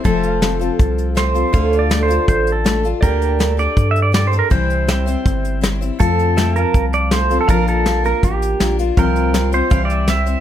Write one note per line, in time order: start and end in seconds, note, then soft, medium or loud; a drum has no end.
0.04 0.71 F1 medium
0.04 1.52 F3 medium
0.04 0.41 A3 medium
0.04 0.41 C4 medium
0.04 0.43 F4 medium
0.04 1.12 A4 medium
0.04 0.43 A4 medium
0.04 1.52 C5 medium
0.04 0.27 E5 medium
0.04 kick medium
0.04 closed hi-hat medium
0.23 1.53 F5 medium
0.23 closed hi-hat medium
0.42 0.60 A3 medium
0.42 0.60 C4 soft
0.42 0.60 F4 soft
0.42 0.58 A4 medium
0.42 snare loud
0.42 closed hi-hat medium
0.59 1.15 C4 soft
0.59 1.15 F4 soft
0.59 1.17 A4 medium
0.59 closed hi-hat medium
0.79 1.45 C2 medium
0.79 kick loud
0.79 closed hi-hat medium
0.98 closed hi-hat medium
1.15 1.34 A3 medium
1.15 1.35 C4 medium
1.15 1.34 F4 medium
1.15 1.33 A4 medium
1.15 1.79 C5 medium
1.15 snare loud
1.15 closed hi-hat medium
1.34 1.53 C4 soft
1.34 1.53 F4 soft
1.34 1.53 A4 soft
1.34 closed hi-hat medium
1.53 2.19 D2 medium
1.53 3.02 D3 medium
1.53 1.89 A3 medium
1.53 1.90 D4 medium
1.53 1.90 F4 medium
1.53 1.92 A4 medium
1.53 1.78 C5 medium
1.53 3.01 F5 medium
1.53 kick loud
1.53 closed hi-hat medium
1.73 closed hi-hat medium
1.78 3.00 D5 medium
1.78 2.02 D5 medium
1.90 2.09 A3 soft
1.90 2.09 D4 medium
1.90 2.08 F4 medium
1.90 2.07 A4 medium
1.90 snare loud
1.90 closed hi-hat medium
2.03 2.27 C5 medium
2.08 2.64 D4 soft
2.08 2.65 F4 soft
2.08 2.64 A4 medium
2.08 closed hi-hat medium
2.28 2.94 A1 medium
2.28 2.51 C5 medium
2.28 kick loud
2.28 closed hi-hat medium
2.47 closed hi-hat medium
2.52 2.87 A4 medium
2.64 2.83 A3 medium
2.64 2.84 D4 medium
2.64 2.84 F4 medium
2.64 2.82 A4 medium
2.64 snare loud
2.64 closed hi-hat medium
2.83 3.02 D4 soft
2.83 3.03 F4 soft
2.83 3.02 A4 soft
2.83 closed hi-hat medium
3.01 3.68 D2 medium
3.01 3.39 D3 medium
3.01 3.38 A#3 medium
3.01 3.38 D4 medium
3.01 3.40 G4 medium
3.01 3.60 A#4 medium
3.01 4.49 D5 medium
3.01 4.49 G5 medium
3.01 kick loud
3.01 closed hi-hat medium
3.22 closed hi-hat medium
3.39 3.58 A#3 medium
3.39 3.58 D4 medium
3.39 3.57 G4 medium
3.39 3.56 A4 medium
3.39 snare loud
3.39 closed hi-hat medium
3.57 4.12 D4 soft
3.57 4.13 G4 soft
3.57 4.13 A4 medium
3.57 3.88 D5 loud
3.57 closed hi-hat medium
3.77 4.42 G2 medium
3.77 kick loud
3.77 closed hi-hat medium
3.91 4.02 E5 loud
3.96 closed hi-hat medium
4.02 4.13 D5 medium
4.12 4.31 A#3 medium
4.12 4.32 D4 medium
4.12 4.32 G4 medium
4.12 4.30 A4 medium
4.12 4.27 D5 medium
4.12 snare loud
4.12 closed hi-hat medium
4.27 4.38 C5 medium
4.32 4.51 D4 soft
4.32 4.51 G4 soft
4.32 4.50 A4 medium
4.32 closed hi-hat medium
4.39 4.50 A#4 medium
4.50 5.16 C2 medium
4.50 4.88 C3 medium
4.50 4.88 E3 medium
4.50 4.86 G3 medium
4.50 4.88 C4 medium
4.50 4.87 E4 medium
4.50 5.59 C5 medium
4.50 4.89 C5 medium
4.50 kick loud
4.50 closed hi-hat medium
4.70 closed hi-hat medium
4.87 5.06 G3 medium
4.87 5.06 C4 medium
4.87 5.06 E4 medium
4.87 5.05 C5 medium
4.87 5.99 E5 medium
4.87 6.00 G5 medium
4.87 snare loud
4.87 closed hi-hat medium
5.06 5.60 G3 soft
5.06 5.61 C4 soft
5.06 5.62 E4 medium
5.06 5.62 C5 medium
5.06 closed hi-hat medium
5.26 5.91 G1 medium
5.26 kick loud
5.26 closed hi-hat medium
5.45 closed hi-hat medium
5.61 5.80 G3 medium
5.61 5.81 C4 medium
5.61 5.80 E4 medium
5.61 5.80 C5 medium
5.61 snare loud
5.61 closed hi-hat medium
5.81 5.99 G3 soft
5.81 5.98 C4 medium
5.81 5.99 E4 medium
5.81 5.99 C5 soft
5.81 closed hi-hat medium
5.99 6.65 F2 medium
5.99 7.49 F3 medium
5.99 6.35 A3 medium
5.99 6.36 C4 medium
5.99 6.38 F4 medium
5.99 6.51 A4 medium
5.99 6.37 A4 medium
5.99 kick medium
5.99 closed hi-hat medium
6.19 closed hi-hat medium
6.36 6.55 A3 medium
6.36 6.55 C4 medium
6.36 6.56 F4 medium
6.36 6.56 A4 medium
6.36 6.57 E5 medium
6.36 6.63 G5 medium
6.36 snare loud
6.36 closed hi-hat medium
6.56 7.11 C4 soft
6.56 7.13 F4 soft
6.56 6.84 A#4 medium
6.56 7.47 F5 medium
6.56 closed hi-hat medium
6.63 7.48 A5 medium
6.74 7.39 C2 medium
6.74 kick loud
6.74 closed hi-hat medium
6.93 7.10 D5 medium
6.93 closed hi-hat medium
7.11 7.30 A3 medium
7.11 7.30 C4 medium
7.11 7.30 F4 medium
7.11 7.28 A4 medium
7.11 7.38 C5 medium
7.11 snare loud
7.11 closed hi-hat medium
7.30 7.49 C4 soft
7.30 7.49 F4 soft
7.30 7.48 A4 soft
7.30 closed hi-hat medium
7.41 7.49 A4 medium
7.48 8.14 A#1 loud
7.48 7.85 A#2 medium
7.48 7.86 F3 medium
7.48 7.84 A#3 medium
7.48 7.85 D4 medium
7.48 7.86 F4 medium
7.48 7.86 A#4 medium
7.48 7.68 A#4 medium
7.48 8.95 F5 medium
7.48 7.70 A5 medium
7.48 kick loud
7.48 closed hi-hat medium
7.67 8.05 A4 medium
7.67 8.96 A#5 medium
7.67 closed hi-hat medium
7.85 8.04 A#3 medium
7.85 8.04 D4 medium
7.85 8.04 F4 medium
7.85 8.03 A#4 medium
7.85 snare loud
7.85 closed hi-hat medium
8.04 8.59 A#3 soft
8.04 8.60 D4 soft
8.04 8.60 F4 soft
8.04 8.60 A#4 medium
8.04 8.24 A#4 medium
8.04 closed hi-hat medium
8.23 8.55 A1 medium
8.23 8.75 G4 medium
8.23 kick loud
8.23 closed hi-hat medium
8.42 closed hi-hat medium
8.60 8.92 A#1 medium
8.60 8.78 A#3 medium
8.60 8.79 D4 medium
8.60 8.78 F4 medium
8.60 8.77 A#4 medium
8.60 snare loud
8.60 closed hi-hat medium
8.79 8.97 A#3 soft
8.79 8.98 D4 soft
8.79 8.97 F4 medium
8.79 8.97 A#4 medium
8.79 closed hi-hat medium
8.97 9.62 C2 medium
8.97 9.34 C3 medium
8.97 9.34 F3 medium
8.97 9.33 G3 medium
8.97 9.33 C4 medium
8.97 9.34 F4 medium
8.97 9.54 A#4 medium
8.97 9.35 C5 medium
8.97 9.71 F5 medium
8.97 9.71 G5 medium
8.97 kick loud
8.97 closed hi-hat medium
9.16 closed hi-hat medium
9.34 9.52 G3 medium
9.34 9.53 C4 medium
9.34 9.52 F4 medium
9.34 9.51 C5 medium
9.34 snare loud
9.34 closed hi-hat medium
9.52 9.69 G3 soft
9.52 9.70 C4 soft
9.52 9.71 F4 soft
9.52 9.70 C5 medium
9.52 9.82 C5 loud
9.52 closed hi-hat medium
9.70 10.36 C2 loud
9.70 10.08 C3 medium
9.70 10.08 E3 medium
9.70 10.06 G3 medium
9.70 10.07 C4 medium
9.70 10.08 E4 medium
9.70 10.08 C5 medium
9.70 9.91 F5 medium
9.70 10.40 G5 medium
9.70 kick loud
9.70 closed hi-hat medium
9.85 10.07 D5 loud
9.90 10.40 E5 medium
9.90 closed hi-hat medium
10.07 10.26 G3 medium
10.07 10.26 C4 medium
10.07 10.25 E4 medium
10.07 10.24 C5 medium
10.07 10.40 E5 medium
10.07 snare loud
10.07 closed hi-hat medium
10.26 10.40 G3 soft
10.26 10.40 C4 soft
10.26 10.40 E4 soft
10.26 10.40 C5 soft
10.26 closed hi-hat medium